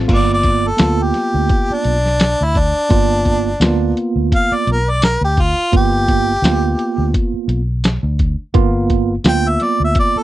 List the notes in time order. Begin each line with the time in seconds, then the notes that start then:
0.08 G1 A#3 B3 F4, kick, closed hi-hat, crash
0.13 D5
0.34 D5
0.43 kick, closed hi-hat
0.67 A4
0.77 D2 A#3 B3 F4, snare, closed hi-hat, tambourine
1.03 G4
1.14 snare, closed hi-hat
1.34 D2
1.49 kick, closed hi-hat
1.70 D4, muted fingered electric bass stroke
1.84 B1, closed hi-hat
2.06 snare
2.20 snare, closed hi-hat, tambourine
2.41 D2 E4
2.55 D4, kick, closed hi-hat
2.90 G1 A#3 B3 F4, kick, closed hi-hat
3.25 kick, closed hi-hat
3.60 D2 A#3 B3 F4, snare, closed hi-hat, tambourine
3.97 closed hi-hat
4.16 D2
4.32 F5, kick, closed hi-hat
4.52 D5, muted fingered electric bass stroke
4.67 B1, closed hi-hat
4.72 A#4
4.90 D5
5.02 A#4, snare, closed hi-hat, tambourine
5.21 D2 G4
5.37 kick, closed hi-hat
5.41 F4
5.72 G1 A#3 B3 F4, kick, closed hi-hat
5.77 G4
6.08 kick, closed hi-hat
6.42 D2 A#3 B3 F4, snare, closed hi-hat, tambourine
6.79 closed hi-hat
6.98 D2
7.14 kick, closed hi-hat
7.34 muted fingered electric bass stroke
7.48 B1, closed hi-hat
7.84 snare, closed hi-hat, tambourine
8.03 D2
8.19 kick, closed hi-hat
8.54 G1 A#3 B3 F4, kick, closed hi-hat
8.90 kick, closed hi-hat
9.24 D2 A#3 B3 F4, snare, closed hi-hat, tambourine
9.29 G5
9.48 E5
9.60 D5, snare, closed hi-hat
9.80 D2
9.84 E5
9.95 kick, closed hi-hat
10.00 D5
10.16 A4, muted fingered electric bass stroke